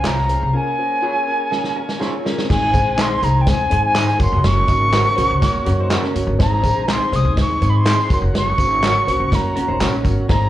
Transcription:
Already playing: tonewheel organ C4 C#4 F4
0.04 upright bass C2, grand piano C#4 F4 G#4 D#5, clean electric guitar F4 G#4 C5, flute A#5, snare, clap, closed hi-hat, tambourine
0.18 snare
0.29 grand piano C#4 F4 G#4 C5, closed hi-hat, tambourine
0.42 upright bass C2
0.53 tonewheel organ A#3 G#4, grand piano C#4 F4 G#4 A#4, flute G#5
0.78 grand piano C#4 F4 G#4 C5
1.02 grand piano C#4 F4 G#4 C#5, clean electric guitar F4 G#4 C#5
1.27 grand piano C#4 F4 G#4 A#4
1.50 grand piano C#4 F4 G#4 A#4, snare
1.64 snare
1.76 grand piano C#4 F4 G#4 A#4, hollow-body jazz guitar C#4 A#4
1.89 snare
2.00 grand piano C#4 F4 G#4 A#4, hollow-body jazz guitar D#4 C5, clean electric guitar F4 G#4 C#5, snare
2.13 hollow-body jazz guitar F4 C#5
2.24 grand piano C#4 F4 G#4 A#4, hollow-body jazz guitar C#4 A#4, snare
2.38 hollow-body jazz guitar C4 G#4, snare
2.49 upright bass G#1, tonewheel organ D#3 C4 G#4, grand piano G#3 C4 D#4 G#4 C5, flute G#5, kick, snare, crash
2.73 upright bass A#1, grand piano G#3 C4 D#4 G#4 C5, kick, closed hi-hat, tambourine
2.97 grand piano G#3 C4 D#4 G#4 C5, clean electric guitar D#4 G#4 C5, flute C6, snare, clap, closed hi-hat, tambourine
3.22 upright bass C2, grand piano G#3 C4 D#4 G#4, flute A#5, closed hi-hat, tambourine
3.41 flute G5
3.46 upright bass D#2, grand piano G#3 C4 D#4 G#4 C5, flute G#5, kick, snare, closed hi-hat, tambourine
3.70 upright bass G#2, grand piano G#3 C4 D#4 G#4 C5, closed hi-hat
3.86 flute G#5
3.95 grand piano G#3 C4 D#4 D#5, clean electric guitar D#4 G#4 C5, snare, clap, closed hi-hat, tambourine
4.08 snare
4.19 upright bass F#1, tonewheel organ C#3 A#3 F#4, grand piano A#3 C#4 F#4 A#4 C#5, flute C6, kick, closed hi-hat, tambourine
4.33 upright bass F1
4.44 upright bass F#1, flute C#6, snare, closed hi-hat, tambourine
4.67 upright bass G#1, grand piano A#3 C#4 F#4 A#4 D#5, kick, closed hi-hat, tambourine
4.92 grand piano A#3 C#4 F#4 A#4 C5, clean electric guitar F#4 A#4 C#5, snare, clap, closed hi-hat, tambourine
5.16 upright bass A#1, grand piano A#3 C#4 F#4 A#4 C5, closed hi-hat, tambourine
5.31 upright bass C#2
5.41 grand piano A#3 C#4 F#4 A#4 C#5, kick, snare, closed hi-hat, tambourine
5.54 muted upright bass stroke
5.65 upright bass F#2, grand piano A#3 C#4 F#4 A#4 C#5, hollow-body jazz guitar C#4 A#4, closed hi-hat, tambourine
5.80 hollow-body jazz guitar D#4 C5
5.90 grand piano A#3 C#4 F#4 A#4 D#5, clean electric guitar F#4 A#4 C#5, snare, clap, closed hi-hat, tambourine
6.03 hollow-body jazz guitar C#4 A#4, snare
6.14 upright bass F#1, grand piano A#3 C#4 F#4 A#4 C#5, closed hi-hat, tambourine
6.27 upright bass G1
6.38 upright bass G#1, tonewheel organ D#3 C4 G#4, grand piano G#3 C4 D#4 G#4 C5, flute A#5, kick, snare, closed hi-hat, tambourine
6.63 upright bass A#1, grand piano G#3 C4 D#4 G#4 C5, kick, closed hi-hat, tambourine
6.87 grand piano G#3 C4 D#4, clean electric guitar D#4 G#4 C5, flute C6, snare, clap, closed hi-hat, tambourine
7.12 upright bass C2, grand piano G#3 C4 D#4 G#4 C5, flute D#6, closed hi-hat, tambourine
7.25 upright bass D#2
7.36 upright bass D#2, grand piano G#3 C4 D#4 G#4 C5, kick, snare, closed hi-hat, tambourine
7.41 flute C#6
7.61 upright bass G#2, grand piano G#3 C4 D#4 G#4 C5, closed hi-hat, tambourine
7.69 flute B5
7.77 flute C6
7.85 grand piano G#3 C4 D#4 G#4 C5, clean electric guitar D#4 G#4 C5, snare, clap, closed hi-hat, tambourine
7.99 snare
8.10 upright bass F#1, tonewheel organ C#3 A#3 F#4, grand piano A#3 C#4 F#4 A#4 C#5, flute C6, kick, closed hi-hat, tambourine
8.22 upright bass F1
8.34 upright bass F#1, flute C#6, snare, closed hi-hat
8.58 upright bass G#1, grand piano A#3 C#4 F#4 A#4 C5, kick, closed hi-hat, tambourine
8.83 grand piano A#3 C#4 F#4 A#4 C#5, clean electric guitar F#4 A#4 C#5, snare, clap, closed hi-hat, tambourine
9.07 upright bass A#1, grand piano A#3 C#4 F#4 A#4 C5, closed hi-hat, tambourine
9.20 upright bass C#2
9.32 upright bass F#2, grand piano A#3 C#4 F#4 A#4 C#5, flute A#5, kick, snare, closed hi-hat, tambourine
9.56 grand piano A#3 C#4 F#4 A#4 C#5, hollow-body jazz guitar C#4 A#4, muted upright bass stroke, closed hi-hat
9.68 upright bass F#1, hollow-body jazz guitar D#4 C5
9.80 upright bass A#1, grand piano A#3 C#4 F#4 A#4 C#5, clean electric guitar F#4 A#4 C#5, snare, clap, closed hi-hat, tambourine
9.92 hollow-body jazz guitar C#4 A#4
10.05 upright bass G1, grand piano A#3 C#4 F#4 A#4 C#5, kick, closed hi-hat, tambourine
10.28 upright bass G#1, tonewheel organ D#3 C4 G#4, grand piano G#3 C4 D#4 G#4 C5, flute A#5, kick, snare, closed hi-hat

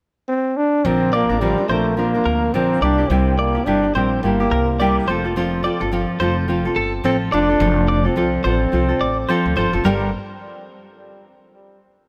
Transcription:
0.28 trombone C4
0.57 trombone D4
0.85 upright bass A#1, nylon-string guitar A#2 D3 F3 C4 D4 A#4, trombone C4
1.12 nylon-string guitar F3 C4 D4 A#4, trombone A#3, clean electric guitar D5
1.29 upright bass A1, nylon-string guitar F3 C4 D4 A#4
1.40 nylon-string guitar A#2 D3 F3 C4 D4 A#4, trombone G3
1.58 nylon-string guitar F3 C4 D4 A#4
1.69 upright bass A#1, nylon-string guitar F3 C4 D4 A#4, trombone A3, clean electric guitar C5
1.97 nylon-string guitar F3 C4 D4 A#4, trombone A#3
2.14 nylon-string guitar F3 C4 D4 A#4
2.25 upright bass D2, clean electric guitar A#4
2.54 upright bass A#1, nylon-string guitar A#2 D3 F3 C4 D4 A#4, trombone C4
2.82 upright bass C2, nylon-string guitar G3 A#3 E4 G4, trombone D4, clean electric guitar D5
2.98 nylon-string guitar A#3 E4 G4
3.09 upright bass C2, nylon-string guitar C3 G3 A#3 E4 G4, trombone C4
3.38 trombone A#3, clean electric guitar D5
3.55 nylon-string guitar A#3 E4 G4
3.66 upright bass G1, nylon-string guitar C3 G3 A#3 E4 G4, trombone D4
3.83 nylon-string guitar A#3 E4 G4
3.95 upright bass A#1, nylon-string guitar G3 A#3 E4 G4, trombone C4, clean electric guitar C5
4.23 upright bass G1, nylon-string guitar G3 A#3 E4 G4, trombone A#3
4.40 nylon-string guitar A#3 E4 G4
4.51 upright bass C2, clean electric guitar A#4
4.80 nylon-string guitar C3 G3 A#3 E4 G4, clean electric guitar D5
5.07 upright bass F1, nylon-string guitar F3 C4 F4 A4, clean electric guitar C5
5.24 nylon-string guitar C4 F4 A4
5.36 nylon-string guitar F3 C4 F4 A4
5.63 nylon-string guitar F3 C4 F4 A4, clean electric guitar D5
5.80 upright bass G1, nylon-string guitar C4 F4 A4
5.92 nylon-string guitar F3 C4 F4 A4
6.20 upright bass F1, nylon-string guitar F3 C4 F4 A4, clean electric guitar C5
6.48 nylon-string guitar F3 C4 F4 A4
6.65 nylon-string guitar C4 F4 A4
6.76 upright bass G1, clean electric guitar A4
7.04 upright bass A1, nylon-string guitar F3 C4 F4 A4, trombone C4
7.32 upright bass F1, nylon-string guitar F3 C4 F4 A4, trombone D4, clean electric guitar D5
7.49 nylon-string guitar C4 F4 A4
7.60 upright bass F1, nylon-string guitar F3 C4 F4 A4
7.88 clean electric guitar D5
8.05 trombone C4, nylon-string guitar C4 F4 A4
8.16 upright bass C2, nylon-string guitar F3 C4 F4 A4
8.44 upright bass A1, nylon-string guitar F3 C4 F4 A4, trombone C4, clean electric guitar C5
8.72 upright bass C2, nylon-string guitar F3 C4 F4 A4
8.89 nylon-string guitar C4 F4 A4
9.01 upright bass A1, clean electric guitar D5
9.29 nylon-string guitar F3 C4 F4 A4, clean electric guitar C5
9.46 upright bass D2
9.56 upright bass G1, nylon-string guitar F3 C4 F4 A4, clean electric guitar C5
9.73 upright bass F1, nylon-string guitar C4 F4 A4
9.84 upright bass G1, nylon-string guitar G2 D3 G3 A#3 D4 A4, trombone G3, clean electric guitar A#4

